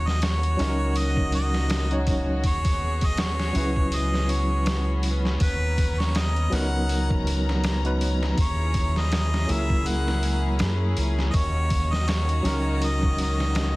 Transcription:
Already playing: fingered electric bass D#2, string section A#3 C#4 F#4
0.07 harmonica D#5, snare
0.22 harmonica C#5, snare, open hi-hat
0.43 closed hi-hat
0.57 fingered electric bass C#2, tine electric piano F#3 C#4 D#4, snare, open hi-hat
0.62 tine electric piano A#4
0.96 harmonica D#5, open hi-hat
1.17 kick
1.32 harmonica D#5, open hi-hat
1.54 snare
1.70 snare, open hi-hat
1.91 tine electric piano F#3 C#4 D#4 C#5, closed hi-hat
2.07 kick, open hi-hat
2.43 fingered electric bass D#2, string section B3 G#4, harmonica C#5, kick, open hi-hat
2.65 kick, open hi-hat
3.01 kick, open hi-hat
3.06 harmonica D#5
3.17 harmonica C#5, snare, open hi-hat
3.40 snare
3.53 fingered electric bass C#2, tine electric piano F#3 C#4 E4, open hi-hat
3.58 tine electric piano B4
3.76 kick
3.92 harmonica D#5, open hi-hat
4.14 snare
4.29 harmonica C#5, open hi-hat
4.66 snare, open hi-hat
5.03 open hi-hat
5.25 snare
5.40 fingered electric bass D#2, harmonica B4, string section A#5, kick, open hi-hat
5.78 kick, open hi-hat
5.99 harmonica C#5, snare
6.15 harmonica D#5, snare, open hi-hat
6.36 closed hi-hat
6.50 fingered electric bass C#2, tine electric piano F#3 B3 D#4, snare, open hi-hat
6.54 tine electric piano A#4, harmonica F#5
6.89 open hi-hat
7.10 kick
7.27 open hi-hat
7.49 snare
7.64 snare, open hi-hat
7.84 tine electric piano F#3 B3 D#4 B4, closed hi-hat
8.01 open hi-hat
8.23 snare
8.38 fingered electric bass D#2, string section E4 G#4, harmonica C#5, kick, open hi-hat
8.74 kick, open hi-hat
8.96 harmonica D#5, snare
9.12 snare, open hi-hat
9.34 snare
9.46 fingered electric bass C#2, tine electric piano F#3 A#3 E4, open hi-hat
9.51 tine electric piano A#4, harmonica E5
9.70 kick
9.86 harmonica F#5, open hi-hat
10.08 snare
10.23 open hi-hat
10.59 fingered electric bass F#2, snare, open hi-hat
10.97 fingered electric bass C#2, open hi-hat
11.19 snare
11.30 fingered electric bass D#2, string section D#3 A#3 F#4, harmonica D#5, kick, open hi-hat
11.35 harmonica C#5
11.70 kick, open hi-hat
11.93 harmonica D#5, snare
12.08 harmonica C#5, snare, open hi-hat
12.29 closed hi-hat
12.43 fingered electric bass C#2, tine electric piano F#3 C#4 D#4, snare, open hi-hat
12.47 tine electric piano A#4
12.82 harmonica D#5, open hi-hat
13.03 kick
13.18 harmonica D#5, open hi-hat
13.40 snare
13.55 snare, open hi-hat

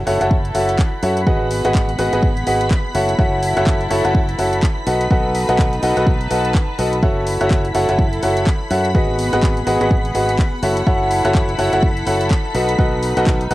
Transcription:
Already playing: string section E4 A4 F#5, analog synth pad B5 B6
0.07 fingered electric bass F#1, upright piano F#4 A4 C#5 E5 F#5, open hi-hat
0.21 fingered electric bass F#1, upright piano F#4 A4 C#5 E5 F#5, closed hi-hat
0.31 kick
0.45 closed hi-hat
0.55 fingered electric bass F#1, upright piano F#4 A4 C#5 E5 F#5, open hi-hat
0.69 closed hi-hat
0.79 kick, clap
1.03 fingered electric bass F#2, upright piano F#4 A4 C#5 E5 F#5, open hi-hat
1.17 closed hi-hat
1.27 fingered electric bass G#1, string section B3, upright piano F#4 G#4 B4 D#5 F#5, kick
1.51 open hi-hat
1.65 fingered electric bass G#1, upright piano F#4 G#4 B4 D#5 F#5, closed hi-hat
1.75 kick, clap
1.89 closed hi-hat
1.93 string section G#4
1.99 fingered electric bass G#1, upright piano F#4 G#4 B4 D#5 F#5, open hi-hat
2.13 fingered electric bass G#1, upright piano F#4 G#4 B4 D#5 F#5, closed hi-hat
2.23 kick
2.37 closed hi-hat
2.47 fingered electric bass G#1, upright piano F#4 G#4 B4 D#5 F#5, open hi-hat
2.61 closed hi-hat
2.71 kick, clap
2.95 fingered electric bass F#1, string section E4, upright piano F#4 A4 C#5 E5 F#5, open hi-hat
3.09 closed hi-hat
3.19 fingered electric bass F#1, upright piano F#4 A4 C#5 E5 F#5, kick
3.23 string section A4
3.43 open hi-hat
3.57 fingered electric bass F#1, upright piano F#4 A4 C#5 E5 F#5, closed hi-hat
3.67 kick, clap
3.81 closed hi-hat
3.91 fingered electric bass F#1, upright piano F#4 A4 C#5 E5 F#5, open hi-hat
4.05 fingered electric bass F#1, upright piano F#4 A4 C#5 E5 F#5, closed hi-hat
4.15 kick
4.29 closed hi-hat
4.39 fingered electric bass F#1, upright piano F#4 A4 C#5 E5 F#5, open hi-hat
4.53 closed hi-hat
4.63 kick, clap
4.87 fingered electric bass B1, string section D#4, upright piano F#4 A4 B4 D#5 F#5, open hi-hat
4.98 string section B4, closed hi-hat
5.11 upright piano F#4 A4 B4 D#5 F#5, kick
5.35 open hi-hat
5.49 fingered electric bass B1, upright piano F#4 A4 B4 D#5 F#5, closed hi-hat
5.59 kick, clap
5.63 string section A5
5.73 closed hi-hat
5.83 fingered electric bass B1, upright piano F#4 A4 B4 D#5 F#5, open hi-hat
5.97 fingered electric bass B1, upright piano F#4 A4 B4 D#5 F#5, closed hi-hat
6.07 kick
6.21 closed hi-hat
6.31 fingered electric bass B1, upright piano F#4 A4 B4 D#5 F#5, open hi-hat
6.45 closed hi-hat
6.55 kick, clap
6.79 fingered electric bass B1, upright piano F#4 A4 B4 D#5 F#5, open hi-hat
6.93 closed hi-hat
7.03 string section E4, upright piano F#4 A4 C#5 E5 F#5, analog synth pad B5 B6, kick
7.27 open hi-hat
7.36 string section A4
7.41 fingered electric bass F#1, upright piano F#4 A4 C#5 E5 F#5, closed hi-hat
7.51 kick, clap
7.65 string section F#5, closed hi-hat
7.75 fingered electric bass F#1, upright piano F#4 A4 C#5 E5 F#5, open hi-hat
7.89 fingered electric bass F#1, upright piano F#4 A4 C#5 E5 F#5, closed hi-hat
7.99 kick
8.13 closed hi-hat
8.23 fingered electric bass F#1, upright piano F#4 A4 C#5 E5 F#5, open hi-hat
8.37 closed hi-hat
8.47 kick, clap
8.71 fingered electric bass F#2, upright piano F#4 A4 C#5 E5 F#5, open hi-hat
8.85 closed hi-hat
8.95 fingered electric bass G#1, string section B3, upright piano F#4 G#4 B4 D#5 F#5, kick
9.16 string section G#4, open hi-hat
9.33 fingered electric bass G#1, upright piano F#4 G#4 B4 D#5 F#5, closed hi-hat
9.43 kick, clap
9.57 closed hi-hat
9.67 fingered electric bass G#1, upright piano F#4 G#4 B4 D#5 F#5, open hi-hat
9.81 fingered electric bass G#1, upright piano F#4 G#4 B4 D#5 F#5, closed hi-hat
9.91 kick
10.05 closed hi-hat
10.15 fingered electric bass G#1, upright piano F#4 G#4 B4 D#5 F#5, open hi-hat
10.29 closed hi-hat
10.39 kick, clap
10.63 fingered electric bass F#1, string section E4, upright piano F#4 A4 C#5 E5 F#5, open hi-hat
10.77 string section A4, closed hi-hat
10.87 fingered electric bass F#1, upright piano F#4 A4 C#5 E5 F#5, kick
11.11 open hi-hat
11.25 fingered electric bass F#1, upright piano F#4 A4 C#5 E5 F#5, closed hi-hat
11.35 kick, clap
11.49 closed hi-hat
11.59 fingered electric bass F#1, upright piano F#4 A4 C#5 E5 F#5, open hi-hat
11.73 fingered electric bass F#1, upright piano F#4 A4 C#5 E5 F#5, closed hi-hat
11.83 kick
11.97 closed hi-hat
12.07 fingered electric bass F#1, upright piano F#4 A4 C#5 E5 F#5, open hi-hat
12.21 closed hi-hat
12.31 kick, clap
12.55 fingered electric bass B1, string section D#4, upright piano F#4 A4 B4 D#5 F#5, open hi-hat
12.69 closed hi-hat
12.79 fingered electric bass B1, upright piano F#4 A4 B4 D#5 F#5, kick
12.98 string section B4
13.03 open hi-hat
13.17 fingered electric bass B1, upright piano F#4 A4 B4 D#5 F#5, closed hi-hat
13.27 kick, clap
13.41 closed hi-hat
13.51 fingered electric bass B1, upright piano F#4 A4 B4 D#5 F#5, open hi-hat

